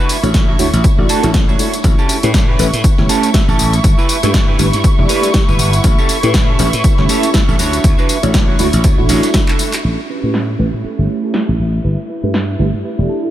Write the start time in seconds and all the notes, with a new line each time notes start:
Already playing: E4 C#6
0.00 D4 F#4 B4
0.09 open hi-hat, tambourine
0.23 A1 A3 D4 E4 F#4 C#5, closed hi-hat, tambourine
0.34 muted clean electric guitar stroke, kick, snare, closed hi-hat, tambourine
0.48 D4 F#4 E5, tambourine
0.59 D2 A3 D4 E4 F#4 C#5, open hi-hat, tambourine
0.73 A1, closed hi-hat, tambourine
0.84 muted clean electric guitar stroke, kick, closed hi-hat, tambourine
0.98 A1 A3 D4 E4 F#4 D5, tambourine
1.09 D4 F#4 A4, open hi-hat, tambourine
1.23 A1 A3 D4 E4 F#4 C#5, snare, closed hi-hat, tambourine
1.34 kick, snare, closed hi-hat, tambourine
1.48 D4 F#4 C#5, tambourine
1.59 A3 D4 E4 F#4 C#5, open hi-hat, tambourine
1.74 closed hi-hat, tambourine
1.83 A1 E4 C#6, kick, closed hi-hat, tambourine
1.84 tambourine
1.98 C#4 G4 A4, tambourine
2.09 open hi-hat, tambourine
2.23 A2 A3 C#4 E4 G4 B4, closed hi-hat, tambourine
2.34 muted clean electric guitar stroke, kick, snare, closed hi-hat, tambourine
2.48 C#4 G4 B4, tambourine
2.59 A1 A3 C#4 E4 G4 B4, open hi-hat, tambourine
2.73 A2, closed hi-hat, tambourine
2.84 muted clean electric guitar stroke, muted slap bass stroke, kick, closed hi-hat, tambourine
2.98 G1 A3 C#4 E4 G4 C#5, snare, tambourine
3.09 C#4 G4 A4, open hi-hat, tambourine
3.23 closed hi-hat, tambourine
3.34 A3 C#4 E4 G4 E5, kick, snare, closed hi-hat, tambourine
3.48 A1 C#4 G4 A4, tambourine
3.59 A1, open hi-hat, tambourine
3.73 closed hi-hat, tambourine
3.84 G1, kick, closed hi-hat, tambourine
3.98 E4 G4 B4, tambourine
4.09 open hi-hat, tambourine
4.22 G2 A3 D4 E4 G4 B4, closed hi-hat, tambourine
4.34 muted clean electric guitar stroke, kick, snare, closed hi-hat, tambourine
4.48 E4 G4 B4, tambourine
4.59 G1 A3 D4 E4 G4 B4, open hi-hat, tambourine
4.73 G2, closed hi-hat, tambourine
4.84 muted clean electric guitar stroke, kick, closed hi-hat, tambourine
4.98 E1 A3 D4 E4 G4 D5, tambourine
5.08 E4 G4 B4 D5, open hi-hat, tambourine
5.23 snare, closed hi-hat, tambourine
5.34 A3 D4 E4 G4 E5, kick, snare, closed hi-hat, tambourine
5.48 G1 E4 G4 B4, tambourine
5.59 G1 F#5, open hi-hat, tambourine
5.73 closed hi-hat, tambourine
5.84 A1, kick, closed hi-hat, tambourine
5.98 C#4 G4 A4, tambourine
6.09 open hi-hat, tambourine
6.23 A2 A3 C#4 E4 G4 B4, closed hi-hat, tambourine
6.33 kick, snare, closed hi-hat, tambourine
6.48 C#4 G4 A4, tambourine
6.59 A1 A3 C#4 E4 G4 B4, open hi-hat, tambourine
6.73 A2, closed hi-hat, tambourine
6.84 muted slap bass stroke, muted clean electric guitar stroke, kick, closed hi-hat, tambourine
6.98 G1 A3 C#4 E4 G4 C#5, snare, tambourine
7.09 C#4 G4 A4, open hi-hat, tambourine
7.23 closed hi-hat, tambourine
7.34 A3 C#4 E4 G4 E5, kick, snare, closed hi-hat, tambourine
7.48 A1 C#4 G4 A4, tambourine
7.59 D2 D4 F#4 C#5, open hi-hat, tambourine
7.73 closed hi-hat, tambourine
7.84 D2, kick, closed hi-hat, tambourine
7.98 D4 F#4 B4, tambourine
8.09 open hi-hat, tambourine
8.23 A1 A3 D4 E4 F#4 C#5, closed hi-hat, tambourine
8.34 muted clean electric guitar stroke, kick, snare, closed hi-hat, tambourine
8.48 D4 F#4 C#5, tambourine
8.59 D2 A3 D4 E4 F#4 C#5, open hi-hat, tambourine
8.73 A1, closed hi-hat, tambourine
8.84 muted clean electric guitar stroke, kick, closed hi-hat, tambourine
8.98 A1 A3 D4 E4 F#4, tambourine
9.09 A1 D4 F#4 C#5, open hi-hat, tambourine
9.23 snare, closed hi-hat, tambourine
9.34 A3 D4 E4 F#4 E5, kick, snare, closed hi-hat, tambourine
9.48 D4 F#4 A4, clap, tambourine
9.59 open hi-hat, tambourine
9.72 clap, closed hi-hat, tambourine
9.74 tambourine
9.84 A1 C#4 E4 G4 A4 E5
10.09 C#4 G4 B4
10.23 A2 A3 C#4 E4 G4 B4, tambourine
10.34 snare
10.58 A1 A3 C#4 E4 G4 B4
10.73 A2
10.84 C#4 G4 A4, muted slap bass stroke
10.98 G1 A3 C#4 E4 G4 C#5
11.23 C#4 G4 A4
11.34 A3 C#4 E4 G4 E5, snare
11.48 A1
11.59 A1
11.84 G1 E4 G4 B4
12.09 E4 G4 B4
12.23 G2 A3 D4 E4 G4 B4
12.34 snare
12.59 G1 A3 D4 E4 G4 B4
12.73 G2
12.84 E4 G4 B4
12.98 E1 A3 D4 E4 G4 D5
13.09 A5
13.23 E4 G4 A4